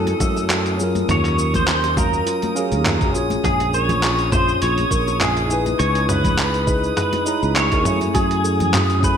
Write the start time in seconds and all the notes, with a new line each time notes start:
Already playing: F#2 A3 C#4 E4 A4 G#5 D#6
0.07 closed hi-hat, high conga, shaker
0.20 F#2 A4, kick, mid tom, shaker
0.36 high bongo, shaker
0.50 F#4, clap, closed hi-hat, high conga, shaker
0.66 closed hi-hat, shaker
0.77 F#3 C#4 F4 G#4, high bongo, shaker
0.83 A#4
0.95 closed hi-hat, high conga, shaker
1.08 D#2 F4 C#5, closed hi-hat, mid tom, shaker
1.25 clap, closed hi-hat, shaker
1.38 A#4, high bongo, shaker
1.54 C5, kick, closed hi-hat, high conga, low conga, shaker
1.67 F4, clap, closed hi-hat, shaker
1.84 closed hi-hat, high bongo, shaker
1.96 F#3 C#4 F#4 A#4 F5, kick, mid tom, high conga, shaker
2.13 shaker
2.26 F4, closed hi-hat, shaker
2.42 closed hi-hat, high bongo, high conga, shaker
2.55 F#3 C#4 G#4 A#4 F5, shaker
2.72 D#2, closed hi-hat, shaker
2.85 F4, clap, closed hi-hat, mid tom, high bongo, high conga, shaker
3.00 C#4 F4 F#4 G#4, kick, closed hi-hat, shaker
3.12 A#1 C#4 F4 F#4 G#4, shaker
3.18 C#5
3.30 closed hi-hat, high conga, shaker
3.44 A#1 F4 G#4, kick, closed hi-hat, mid tom, shaker
3.60 closed hi-hat, high bongo, shaker
3.74 A#4 C#5, shaker
3.89 closed hi-hat, high conga, low conga, shaker
4.03 F4, clap, closed hi-hat, high bongo, shaker
4.19 closed hi-hat, shaker
4.30 C#4 F4 G#4 C5, kick, mid tom, high conga, shaker
4.34 G#4 C#5
4.48 shaker
4.62 A#1 F4 C#5, closed hi-hat, high bongo, shaker
4.78 closed hi-hat, high conga, shaker
4.91 A#1 A#4, kick, shaker
5.08 high bongo, shaker
5.21 F4 G#4, clap, closed hi-hat, mid tom, high conga, shaker
5.37 closed hi-hat, shaker
5.47 D#4 E4 G#4, shaker
5.51 G#4 B4
5.66 closed hi-hat, high bongo, high conga, shaker
5.79 C#2 G#4 C#5, closed hi-hat, shaker
5.95 closed hi-hat, shaker
6.09 B4 C#5, mid tom, high bongo, shaker
6.24 kick, closed hi-hat, high conga, low conga, shaker
6.38 G#4, clap, closed hi-hat, shaker
6.54 closed hi-hat, shaker
6.67 D#4 E4 G#4 B4, kick, high bongo, shaker
6.84 shaker
6.97 G#4 B4, closed hi-hat, mid tom, shaker
7.13 closed hi-hat, high bongo, high conga, shaker
7.25 D#4 E4 G#4 C#5 A#5, shaker
7.42 C#2, shaker
7.56 G#4 C#5, clap, closed hi-hat, high conga, shaker
7.70 D#4 E4 G#4 A#4, kick, closed hi-hat, high bongo, shaker
7.83 F#2 C#4 E4 G#4, mid tom, shaker
7.87 A3 G#5
8.01 closed hi-hat, high conga, shaker
8.14 F#2 F#4 G#4, kick, closed hi-hat, high bongo, shaker
8.31 closed hi-hat, shaker
8.44 A4, shaker
8.60 closed hi-hat, high conga, low conga, shaker
8.74 F#4, clap, closed hi-hat, mid tom, high bongo, shaker
8.90 closed hi-hat, shaker
9.00 C#4 E4 G#4 B4, kick, high conga, shaker
9.05 A3 G#5